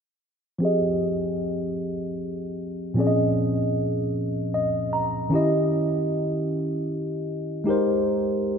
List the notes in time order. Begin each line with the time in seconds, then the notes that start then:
0.58 F3 C4 G4
0.63 G#4 D#5
2.94 A#2 F3 C4 C#4
2.99 G#4 D5
3.07 D#5
4.54 D#5
4.93 A#5
5.29 D#3 C#4 E4
5.34 G4 D#5
7.64 G#3 D#4 G4
7.69 A#4 C5